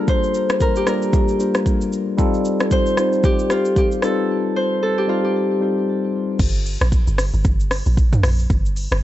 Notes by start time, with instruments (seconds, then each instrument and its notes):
Already playing: tine electric piano G3 A#3 D4 F4 G4 G#4 A4, harp F4 G4
0.08 harp C5, kick, shaker
0.23 shaker
0.34 shaker
0.49 cross-stick, shaker
0.60 harp A#4, kick, shaker
0.76 harp G4, shaker
0.86 tine electric piano G3 A#3 D4 F4 A4, harp A#4, cross-stick, shaker
0.94 tine electric piano A#4
1.02 shaker
1.13 kick, shaker
1.28 shaker
1.39 tine electric piano G3 A#3 D4 F4 C5, shaker
1.55 cross-stick, shaker
1.66 kick, shaker
1.81 shaker
1.93 shaker
2.18 tine electric piano G3 C4 D#4 F4 A4, kick, shaker
2.34 shaker
2.45 shaker
2.60 cross-stick, shaker
2.71 harp C5, kick, shaker
2.86 shaker
2.97 tine electric piano G3 C4 D#4 F4 C5, cross-stick, shaker
3.13 shaker
3.24 harp G4, kick, shaker
3.39 shaker
3.50 harp F4, cross-stick, shaker
3.65 shaker
3.76 harp G4, kick, shaker
3.92 shaker
4.02 tine electric piano G3 C4 D#4 F4 B4, harp A4, cross-stick, shaker
4.10 tine electric piano C5
4.56 harp C5
4.83 harp A4
4.98 harp G4
5.07 tine electric piano G3 C4 D#4 F4 A4, harp F4
5.24 harp G4
5.60 tine electric piano G3 C4 D#4 F4 C5
6.39 log drum bass G1, kick, crash, shaker
6.55 shaker
6.66 open hi-hat, shaker
6.81 log drum bass A#1, cross-stick, shaker
6.92 kick, shaker
7.07 log drum bass G1, shaker
7.18 cross-stick, open hi-hat, shaker
7.34 log drum bass G1, shaker
7.45 log drum bass G1, kick, shaker
7.60 shaker
7.71 cross-stick, open hi-hat, shaker
7.86 log drum bass A#1, shaker
7.97 kick, shaker
8.13 mid tom, shaker
8.23 log drum bass A#1, cross-stick, open hi-hat, shaker
8.39 shaker
8.50 log drum bass G1, kick, shaker
8.65 shaker
8.76 open hi-hat, shaker
8.92 log drum bass G1, cross-stick, shaker